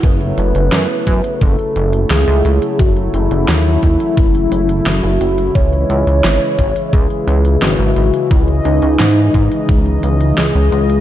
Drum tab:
HH |xxxxxxxxxxxxxxxx|xxxxxxxxxxxxxxxx|xxxxxxxxxxxxxxxx|xxxxxxxxxxxxxxxx|
SD |----o-------o---|----o-------o---|----o-------o---|----o-------o---|
BD |o-----o-o-------|o-----o-o-------|o-----o-o-------|o-----o-o-------|